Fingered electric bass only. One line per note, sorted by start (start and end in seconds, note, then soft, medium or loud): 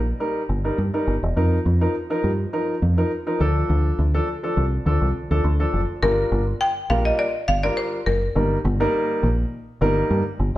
0.00 0.12 A#1 medium
0.49 0.70 G1 loud
0.78 0.89 G2 medium
1.07 1.18 G1 medium
1.23 1.33 E1 medium
1.36 1.57 F2 loud
1.66 1.86 F2 medium
2.24 2.45 G2 medium
2.82 3.03 F2 medium
3.40 3.61 D2 loud
3.70 3.90 D2 loud
3.99 4.19 D2 loud
4.57 4.78 C2 medium
4.86 4.97 D2 loud
5.01 5.11 C2 medium
5.31 5.40 D2 medium
5.44 5.65 D2 medium
5.74 5.84 F#1 medium
6.03 6.23 G1 loud
6.32 6.52 G1 loud
6.90 7.11 A#1 medium
7.48 7.69 G1 medium
8.07 8.27 F#1 medium
8.36 8.56 G1 loud
8.65 8.85 G1 loud
9.23 9.44 A#1 medium
9.81 10.02 G1 loud
10.10 10.21 G2 loud
10.40 10.51 G1 medium